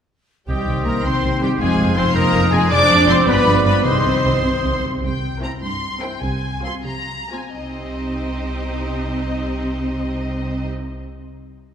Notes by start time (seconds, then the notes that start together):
0.48 C2 G2 C3 D#3 G3 C4 D#4 G4 C5 D#5 G5
0.67 C2 C3
0.85 C2 C3 A#3 A#4 A#5
1.04 C2 C3 C4 C5 G5 C6
1.23 C2 C3
1.41 C2 C3 G3 G4 G5
1.59 F1 F2 F3 G#3 G#4 F5 G#5
1.78 F1 F2
1.96 F1 F2 C4 C5 C6
2.15 F1 F2 A#3 A#4 D#5 A#5
2.34 F1 F2
2.52 F1 F2 G#3 G#4 G#5
2.69 F1 F2 F3 G#3 D4 D5 D6
2.89 F1 F2
3.07 F1 F2 C4 C5 C6
3.25 G1 G2 F3 G#3 B3 D4 B4 D5 B5
3.45 G1 G2
3.64 G1 G2 B3 B4 B5
3.82 C2 G2 C3 D#3 G3 D#4 C5 D#5 C6
3.86 C4
4.04 C2 C3
4.23 C2 C3
4.44 C2 C3
4.64 C2 C3
4.83 C2 C3
5.03 C2 C3 G5
5.42 C4 E4 A#4 C5 A#5
5.63 G2 C6
6.02 C4 E4 A#4 C5 G5
6.22 C2 C3 G#5
6.63 C4 F4 G#4 C5 C6
6.86 C3 A#5
7.32 C4 F4 G#4 C5 G#5
7.55 C2 C3 C4 D#4 G4 C5 D#5